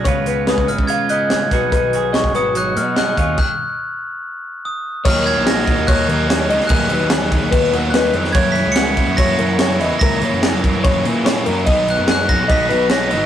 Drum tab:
CC |----------------|----------------|x---------------|x-x-x-x-x-x-x-x-|
HH |x-x-x-x-x-x-x-x-|x-x-x-x-x-x-x-x-|----------------|----------------|
SD |----o-------o-o-|----o-------o---|----------------|----o-------o--o|
BD |o----o-o------o-|o----o--------o-|o---------------|o-----o-o-------|

CC |x-x-x-x-x-x-x-x-|x-x-x-x-x-x-x-x-|x-x-x-x-x-x-x-x-|x-x-x-x-x-x-x-x-|
HH |----------------|----------------|----------------|----------------|
SD |----o-------o--o|----o-------o---|----o-------o---|----o-------o---|
BD |o-----o-o-------|o-----o-o-------|o-----o-o-------|o-----o-o-------|